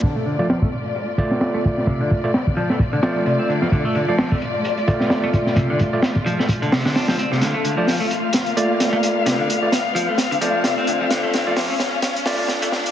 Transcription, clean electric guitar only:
X:1
M:4/4
L:1/16
Q:"Swing 16ths" 1/4=130
K:Dm
V:1 name="Clean electric guitar" clef=bass
D, A, D, F,2 A, z6 z A, z2 | C, D, z4 F, A, z D, F,2 C, C D, F, | D, A, D, F,2 A, z6 z A, z2 | C, D, z4 F, A, z D, C, D, D F, C C, |
D, A, D, F,2 A, z6 z A, z2 | C, D, z4 F, A, z D, F,2 C, C D, F, | D, A, D, F,2 A, z6 z A, z2 |]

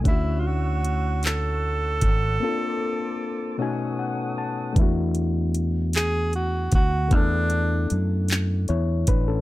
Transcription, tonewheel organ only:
X:1
M:6/8
L:1/8
Q:3/8=51
K:Emix
V:1 name="Tonewheel organ"
[cfe']6 | [_B,=cad']3 [=B,A^cf^d']3 | z6 | z6 |]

